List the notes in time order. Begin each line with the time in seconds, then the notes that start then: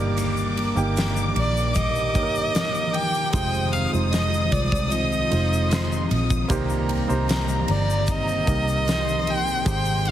Already playing: G1 G2 D#3 G3 A#3 D4 D#4 G4 A#4 D5 D6
0.17 G2 D#3 G3 A#3 D4 G4, ride, shaker
0.37 shaker
0.56 G3 A#3 D4 G4, ride
0.76 G1 A#3 D#4 G4 G5, shaker
0.96 G3 A#3 D4 G4, snare, ride, shaker
1.17 shaker
1.36 A#1 D5, ride
1.57 shaker
1.74 G2 D#3 G3 A#3 G4 D#5, kick, ride, shaker
1.95 shaker
2.14 G1 A#3 D#4 G4 C#5, kick, ride, shaker
2.23 A#4
2.35 shaker
2.54 G3 A#3 G4, snare, ride, shaker
2.74 shaker
2.93 G3 A#3 D4 G4 G5, ride
3.14 shaker
3.32 F1 C3 F3 G#3 C4 D#4 F4 G#4 C5 G5 D#6, kick, ride, shaker
3.54 shaker
3.72 C4 D#4 G#4 F5, ride, shaker
3.92 F1 G#3 D#4 F4 C5, shaker
4.11 F3 C4 D#4 G#4 D#5, snare, ride, shaker
4.34 shaker
4.51 C2 D5, kick, ride, shaker
4.72 kick, shaker
4.90 F3 C4 D#4 G#4 D#5, ride, shaker
5.12 shaker
5.30 F1 G#3 D#4 F4 C5, ride, shaker
5.53 shaker
5.69 F3 C4 D#4 G#4 C6, snare, ride, shaker
5.92 shaker
6.09 A#1 C4 D#4 G#4 D#6, ride
6.30 kick, shaker
6.48 C2 G2 C3 G3 A#3 C4 D#4 G4 C5 A#5, kick, ride, shaker
6.70 shaker
6.89 ride
7.08 C2 A#3 D#4 G4 C5, shaker
7.28 G3 A#3 D#4 G4, snare, ride, shaker
7.48 shaker
7.68 G1 D5, ride
7.90 shaker
8.06 C3 G3 A#3 D#4 G4, kick, ride, shaker
8.11 D#5
8.28 shaker
8.46 C2 A#3 D#4 G4 D#5, kick, ride, shaker
8.68 shaker
8.85 G3 A#3 D#4 G4 C6, snare, ride, shaker
9.08 shaker
9.25 A#3 D#4 G4, ride
9.30 G5
9.47 shaker
9.65 G#1 G#2 D#3 G#3 C4 D#4 G4 C5 C6, kick, ride, shaker
9.70 G5
9.85 ride, shaker
10.05 C4 D#4 G4, ride